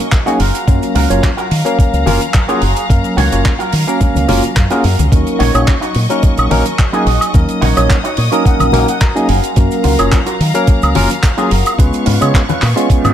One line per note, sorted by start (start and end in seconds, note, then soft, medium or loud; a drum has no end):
0.00 11.75 F#3 medium
0.00 0.36 D#5 medium
0.00 0.36 C#6 medium
0.12 kick loud
0.12 clap loud
0.12 closed hi-hat medium
0.12 cabasa medium
0.26 0.38 F#3 medium
0.26 0.38 A#3 medium
0.26 0.38 C#4 medium
0.26 0.39 D#4 medium
0.26 0.38 D#4 medium
0.26 0.38 F#4 medium
0.26 0.39 G#4 loud
0.26 0.40 C#5 medium
0.26 closed hi-hat soft
0.26 cabasa medium
0.39 0.50 F#1 medium
0.39 0.85 F4 medium
0.39 0.85 F#4 medium
0.39 0.85 A#4 medium
0.39 5.08 F5 medium
0.39 5.08 A#5 medium
0.39 open hi-hat loud
0.55 closed hi-hat medium
0.55 cabasa medium
0.67 0.78 F#2 medium
0.67 1.06 F#3 medium
0.67 1.07 A#3 medium
0.67 1.07 C#4 medium
0.67 1.07 A#4 medium
0.67 1.07 F5 medium
0.67 kick loud
0.67 closed hi-hat medium
0.67 cabasa medium
0.83 closed hi-hat soft
0.83 cabasa soft
0.95 1.06 C#2 medium
0.95 1.10 F4 loud
0.95 1.10 F#4 loud
0.95 1.10 A#4 loud
0.95 open hi-hat loud
0.95 low conga medium
1.09 1.19 F#1 medium
1.09 1.30 F#3 medium
1.09 1.30 A#3 medium
1.09 1.30 C#4 medium
1.09 1.30 F4 medium
1.09 1.30 C#5 medium
1.09 closed hi-hat medium
1.09 cabasa medium
1.22 muted clean electric guitar stroke loud
1.22 kick loud
1.22 clap loud
1.22 closed hi-hat medium
1.22 cabasa medium
1.37 1.51 F4 medium
1.37 1.51 F#4 medium
1.37 1.51 A#4 medium
1.37 closed hi-hat soft
1.37 cabasa soft
1.51 1.61 D#3 medium
1.51 open hi-hat loud
1.65 2.03 F#3 medium
1.65 2.03 A#3 medium
1.65 2.03 C#4 medium
1.65 2.03 A#4 loud
1.65 2.03 F5 medium
1.65 muted clean electric guitar stroke soft
1.65 closed hi-hat medium
1.65 cabasa medium
1.79 muted fingered electric bass stroke soft
1.79 kick loud
1.79 closed hi-hat medium
1.79 cabasa medium
1.93 2.03 C#2 medium
1.93 closed hi-hat soft
1.93 cabasa soft
2.06 2.17 F#1 medium
2.06 2.20 F#3 medium
2.06 2.20 A#3 medium
2.06 2.20 C#4 medium
2.06 2.20 F4 medium
2.06 2.20 A#4 loud
2.06 muted clean electric guitar stroke soft
2.06 open hi-hat loud
2.06 high conga loud
2.21 closed hi-hat medium
2.21 cabasa medium
2.34 kick loud
2.34 clap loud
2.34 closed hi-hat medium
2.34 cabasa medium
2.48 2.61 F#3 medium
2.48 2.61 A#3 medium
2.48 2.61 C#4 medium
2.48 2.83 F4 medium
2.48 2.61 F4 medium
2.48 2.83 F#4 medium
2.48 2.83 G#4 medium
2.48 2.61 G#4 loud
2.48 closed hi-hat soft
2.48 cabasa soft
2.62 2.72 F#1 medium
2.62 open hi-hat medium
2.76 closed hi-hat medium
2.76 cabasa medium
2.89 3.00 F#2 medium
2.89 3.29 F#3 medium
2.89 3.29 A#3 medium
2.89 3.29 C#4 medium
2.89 3.29 A#4 medium
2.89 3.29 F5 medium
2.89 kick loud
2.89 closed hi-hat medium
2.89 cabasa medium
3.04 closed hi-hat soft
3.04 cabasa soft
3.17 3.28 C#2 loud
3.17 3.32 F4 loud
3.17 3.32 F#4 loud
3.17 3.32 C#5 loud
3.17 open hi-hat loud
3.17 low conga medium
3.32 3.42 F#1 medium
3.32 3.52 F#3 medium
3.32 3.52 A#3 medium
3.32 3.52 C#4 medium
3.32 3.52 F4 medium
3.32 3.52 C#5 medium
3.32 closed hi-hat medium
3.32 cabasa medium
3.44 muted clean electric guitar stroke loud
3.44 kick loud
3.44 clap loud
3.44 closed hi-hat medium
3.44 cabasa medium
3.59 3.73 F4 medium
3.59 3.73 F#4 medium
3.59 3.73 A#4 medium
3.59 closed hi-hat soft
3.59 cabasa soft
3.73 3.83 D#3 medium
3.73 open hi-hat loud
3.87 4.25 F#3 medium
3.87 4.25 A#3 medium
3.87 4.26 C#4 medium
3.87 4.26 A#4 loud
3.87 4.26 F5 medium
3.87 muted clean electric guitar stroke soft
3.87 closed hi-hat medium
3.87 cabasa medium
4.00 kick loud
4.00 closed hi-hat medium
4.00 low conga medium
4.00 cabasa medium
4.15 4.25 C#2 medium
4.15 closed hi-hat soft
4.15 high conga medium
4.15 cabasa medium
4.28 4.39 F#1 medium
4.28 4.42 F#3 loud
4.28 4.42 A#3 medium
4.28 4.42 C#4 medium
4.28 4.42 F4 medium
4.28 4.42 A#4 loud
4.28 muted clean electric guitar stroke soft
4.28 open hi-hat loud
4.28 low conga medium
4.43 closed hi-hat medium
4.43 cabasa medium
4.56 4.67 F#2 medium
4.56 kick loud
4.56 clap loud
4.56 closed hi-hat medium
4.56 cabasa medium
4.70 4.83 F#3 medium
4.70 4.83 A#3 medium
4.70 4.83 C#4 medium
4.70 5.05 F4 medium
4.70 4.83 F4 medium
4.70 5.05 F#4 medium
4.70 4.83 G#4 loud
4.70 5.06 A#4 medium
4.70 closed hi-hat soft
4.70 cabasa soft
4.84 4.95 F#2 medium
4.84 open hi-hat loud
4.99 5.08 C#2 medium
4.99 closed hi-hat medium
4.99 high conga medium
4.99 cabasa medium
5.12 5.22 D#2 medium
5.12 5.51 F#3 medium
5.12 5.51 A#3 medium
5.12 5.51 C#4 medium
5.12 5.51 D#4 medium
5.12 5.51 A#4 medium
5.12 9.25 D#5 medium
5.12 7.32 C#6 medium
5.12 kick loud
5.12 closed hi-hat medium
5.12 cabasa medium
5.27 closed hi-hat soft
5.27 cabasa soft
5.39 5.50 A#1 medium
5.39 5.54 D#4 loud
5.39 5.54 F#4 loud
5.39 5.55 C#5 loud
5.39 open hi-hat loud
5.39 low conga medium
5.54 5.64 A#1 medium
5.54 5.74 F#3 medium
5.54 5.74 A#3 medium
5.54 5.74 C#4 medium
5.54 5.75 D#4 medium
5.54 5.75 C#5 medium
5.54 closed hi-hat medium
5.54 cabasa medium
5.54 high woodblock medium
5.67 muted clean electric guitar stroke loud
5.67 kick loud
5.67 clap loud
5.67 closed hi-hat medium
5.67 cabasa medium
5.81 5.95 D#4 medium
5.81 5.95 F#4 medium
5.81 5.95 C#5 medium
5.81 closed hi-hat soft
5.81 cabasa soft
5.95 6.06 A#2 medium
5.95 open hi-hat medium
6.09 6.48 F#3 medium
6.09 6.48 A#3 medium
6.09 6.48 C#4 medium
6.09 6.48 D#4 medium
6.09 6.48 A#4 loud
6.09 muted clean electric guitar stroke soft
6.09 closed hi-hat medium
6.09 cabasa medium
6.23 muted fingered electric bass stroke soft
6.23 kick loud
6.23 closed hi-hat medium
6.23 cabasa medium
6.38 6.47 A#1 medium
6.38 closed hi-hat soft
6.38 cabasa soft
6.38 high woodblock medium
6.50 6.61 A#1 medium
6.50 6.64 F#3 loud
6.50 6.64 A#3 medium
6.50 6.64 C#4 medium
6.50 6.65 D#4 medium
6.50 6.65 A#4 loud
6.50 muted clean electric guitar stroke soft
6.50 open hi-hat loud
6.50 high conga medium
6.66 closed hi-hat medium
6.66 cabasa medium
6.79 kick loud
6.79 clap loud
6.79 closed hi-hat medium
6.79 cabasa medium
6.93 7.05 F#3 medium
6.93 7.05 A#3 medium
6.93 7.05 C#4 medium
6.93 7.28 D#4 medium
6.93 7.06 D#4 medium
6.93 7.28 F#4 medium
6.93 7.06 G#4 loud
6.93 7.28 G#4 medium
6.93 closed hi-hat soft
6.93 cabasa soft
7.06 7.17 A#1 medium
7.06 open hi-hat medium
7.21 closed hi-hat medium
7.21 cabasa medium
7.21 high woodblock medium
7.34 7.45 D#2 medium
7.34 7.73 F#3 medium
7.34 7.73 A#3 medium
7.34 7.73 C#4 medium
7.34 7.73 D#4 medium
7.34 7.74 A#4 medium
7.34 9.27 D#6 medium
7.34 kick loud
7.34 closed hi-hat medium
7.34 cabasa medium
7.49 closed hi-hat soft
7.49 cabasa soft
7.61 7.72 A#1 loud
7.61 7.76 D#4 loud
7.61 7.77 F#4 loud
7.61 7.77 C#5 loud
7.61 open hi-hat medium
7.61 low conga medium
7.76 7.86 A#1 medium
7.76 7.97 F#3 medium
7.76 7.97 A#3 medium
7.76 7.97 C#4 medium
7.76 7.97 D#4 medium
7.76 7.97 C#5 medium
7.76 closed hi-hat medium
7.76 cabasa medium
7.76 high woodblock medium
7.89 muted clean electric guitar stroke loud
7.89 kick medium
7.89 clap loud
7.89 closed hi-hat medium
7.89 cabasa medium
8.04 8.17 D#4 medium
8.04 8.18 F#4 medium
8.04 8.16 C#5 loud
8.04 closed hi-hat soft
8.04 cabasa soft
8.17 8.28 A#2 medium
8.17 8.31 C#5 medium
8.17 open hi-hat medium
8.31 8.70 F#3 medium
8.31 8.70 A#3 medium
8.31 8.70 C#4 medium
8.31 8.70 D#4 medium
8.31 8.70 A#4 loud
8.31 8.44 D#5 medium
8.31 muted clean electric guitar stroke soft
8.31 closed hi-hat medium
8.31 cabasa medium
8.45 8.85 F#5 medium
8.45 kick loud
8.45 closed hi-hat medium
8.45 cabasa medium
8.59 8.70 A#1 medium
8.59 closed hi-hat soft
8.59 high conga medium
8.59 cabasa medium
8.59 high woodblock medium
8.72 8.84 A#1 medium
8.72 8.86 F#3 loud
8.72 8.86 A#3 medium
8.72 8.87 C#4 medium
8.72 8.87 D#4 medium
8.72 8.87 A#4 loud
8.72 muted clean electric guitar stroke soft
8.72 open hi-hat loud
8.72 low conga medium
8.88 9.00 F#5 medium
8.88 closed hi-hat medium
8.88 cabasa medium
9.01 9.27 A#5 medium
9.01 kick loud
9.01 clap loud
9.01 closed hi-hat medium
9.01 cabasa medium
9.15 9.27 F#3 medium
9.15 9.27 A#3 medium
9.15 9.27 C#4 medium
9.15 9.28 D#4 medium
9.15 9.27 D#4 medium
9.15 9.27 F#4 medium
9.15 9.27 G#4 loud
9.15 9.29 D#5 loud
9.15 closed hi-hat soft
9.15 cabasa medium
9.28 9.39 F#1 medium
9.28 9.74 F4 medium
9.28 9.74 F#4 medium
9.28 9.74 A#4 loud
9.28 13.14 F5 medium
9.28 9.55 G#5 medium
9.28 11.76 A#5 medium
9.28 open hi-hat loud
9.44 closed hi-hat medium
9.44 cabasa medium
9.56 9.67 F#2 loud
9.56 9.95 F#3 medium
9.56 9.95 A#3 medium
9.56 9.96 C#4 medium
9.56 9.96 A#4 medium
9.56 9.96 F5 medium
9.56 kick loud
9.56 closed hi-hat medium
9.56 cabasa medium
9.71 closed hi-hat soft
9.71 cabasa medium
9.84 9.95 C#2 loud
9.84 9.99 F4 loud
9.84 9.99 F#4 loud
9.84 9.99 A#4 loud
9.84 open hi-hat loud
9.84 low conga medium
9.99 10.08 F#1 medium
9.99 10.19 F#3 medium
9.99 10.19 A#3 medium
9.99 10.19 C#4 medium
9.99 10.19 F4 medium
9.99 10.19 C#5 medium
9.99 closed hi-hat medium
9.99 cabasa medium
9.99 high woodblock medium
10.12 muted clean electric guitar stroke loud
10.12 kick loud
10.12 clap loud
10.12 closed hi-hat medium
10.12 cabasa medium
10.26 10.39 F4 medium
10.26 10.40 F#4 medium
10.26 10.40 A#4 loud
10.26 closed hi-hat soft
10.26 cabasa soft
10.40 10.50 D#3 medium
10.40 open hi-hat medium
10.54 10.92 F#3 loud
10.54 10.92 A#3 medium
10.54 10.92 C#4 medium
10.54 10.93 A#4 loud
10.54 10.92 F5 medium
10.54 muted clean electric guitar stroke soft
10.54 closed hi-hat medium
10.54 cabasa medium
10.67 muted fingered electric bass stroke soft
10.67 kick loud
10.67 closed hi-hat medium
10.67 cabasa medium
10.82 10.92 C#2 medium
10.82 closed hi-hat soft
10.82 cabasa medium
10.82 high woodblock medium
10.95 11.06 F#1 medium
10.95 11.09 F#3 loud
10.95 11.09 A#3 medium
10.95 11.09 C#4 medium
10.95 11.09 F4 medium
10.95 11.09 A#4 loud
10.95 muted clean electric guitar stroke soft
10.95 open hi-hat loud
10.95 high conga medium
11.10 closed hi-hat medium
11.10 cabasa medium
11.23 kick loud
11.23 clap loud
11.23 closed hi-hat medium
11.23 cabasa medium
11.37 11.50 F#3 loud
11.37 11.50 A#3 medium
11.37 11.50 C#4 medium
11.37 11.72 F4 medium
11.37 11.50 F4 medium
11.37 11.72 F#4 medium
11.37 11.50 G#4 loud
11.37 11.72 A#4 loud
11.37 closed hi-hat soft
11.37 cabasa medium
11.51 11.62 F#1 loud
11.51 open hi-hat loud
11.66 closed hi-hat medium
11.66 cabasa medium
11.66 high woodblock medium
11.78 11.89 C#2 loud
11.78 12.17 G#3 medium
11.78 13.14 B3 medium
11.78 12.18 B3 medium
11.78 12.18 C#4 medium
11.78 12.18 F4 medium
11.78 12.18 B4 medium
11.78 13.14 C#6 medium
11.78 kick loud
11.78 closed hi-hat medium
11.78 cabasa medium
11.93 closed hi-hat soft
11.93 cabasa soft
12.06 12.17 G#2 medium
12.06 12.21 C#4 loud
12.06 12.21 F4 loud
12.06 12.21 B4 loud
12.06 open hi-hat loud
12.06 low conga medium
12.21 12.31 C#3 loud
12.21 12.41 G#3 medium
12.21 12.41 B3 medium
12.21 12.41 C#4 medium
12.21 12.41 F4 medium
12.21 12.41 C#5 medium
12.21 closed hi-hat medium
12.21 cabasa medium
12.21 high woodblock medium
12.34 muted clean electric guitar stroke loud
12.34 kick loud
12.34 clap loud
12.34 closed hi-hat medium
12.34 cabasa medium
12.49 12.62 C#4 medium
12.49 12.62 F4 medium
12.49 12.63 B4 loud
12.49 closed hi-hat soft
12.49 high conga medium
12.49 cabasa soft
12.62 12.73 A#2 medium
12.62 clap medium
12.62 open hi-hat medium
12.76 13.14 G#3 loud
12.76 13.14 B3 medium
12.76 13.14 C#4 medium
12.76 13.14 F4 medium
12.76 muted clean electric guitar stroke soft
12.76 closed hi-hat medium
12.76 cabasa medium
12.90 kick loud
12.90 closed hi-hat medium
12.90 reverse cymbal medium
12.90 cabasa medium
13.04 13.14 G#2 medium
13.04 closed hi-hat soft
13.04 high conga medium
13.04 cabasa medium
13.04 high woodblock medium